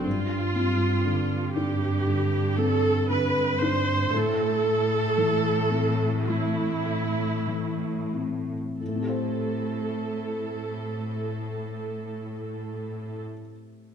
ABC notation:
X:1
M:4/4
L:1/8
Q:1/4=53
K:Am
V:1 name="Viola section"
F3 G2 A B c | A4 E3 z | A8 |]
V:2 name="Felt piano"
G,, C D, D D, C D, D | A,, A, E, C E, A, E, C | [A,,A,CGc]8 |]
V:3 name="Cello section" clef=bass
G,,8 | A,,8 | A,,8 |]